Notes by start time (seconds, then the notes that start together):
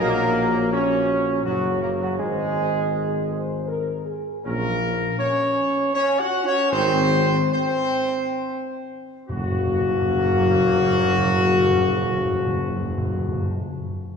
0.00 A#1 A#3 F#4 A#4 C#5
0.72 C#4 F#4 C#5
1.44 F#1 F#3 F#4 C#5
1.82 A#3 A#4
2.00 F#3 F#4
2.18 G#1 G#3 G#4 C5
2.94 G#4
3.31 C5
3.68 A#4
4.05 G#4
4.44 A#1 F#3 A#3 C#4 A#4
5.19 C#4 C#5
5.94 C#4 C#5
6.19 F#4 F#5
6.46 C#4 C#5
6.71 G#1 D#3 C4 C5
7.53 C4 C5
9.29 F#1 F#2 F#3 A#3 F#4
9.36 F#2
9.44 F#2
9.51 F#2
9.58 F#2
9.66 F#2
9.74 F#2
9.81 F#2
9.88 F#2
9.96 F#2
10.02 F#2
10.10 F#2
10.16 F#2
10.24 F#2
10.31 F#2
10.38 F#2
10.46 F#2
10.54 F#2
10.60 F#2
10.67 F#2
10.74 F#2
10.81 F#2
10.89 F#2
10.95 F#2
11.03 F#2
11.10 F#2
11.17 F#2
11.25 F#2
11.32 F#2
11.39 F#2
11.47 F#2
11.54 F#2
11.61 F#2
11.68 F#2
11.75 F#2
11.82 F#2
11.90 F#2
11.96 F#2
12.04 F#2
12.12 F#2
12.19 F#2
12.25 F#2
12.32 F#2
12.39 F#2
12.46 F#2
12.54 F#2
12.61 F#2
12.69 F#2
12.76 F#2
12.82 F#2
12.90 F#2
12.97 F#2
13.05 F#2
13.12 F#2
13.19 F#2
13.26 F#2
13.33 F#2
13.41 F#2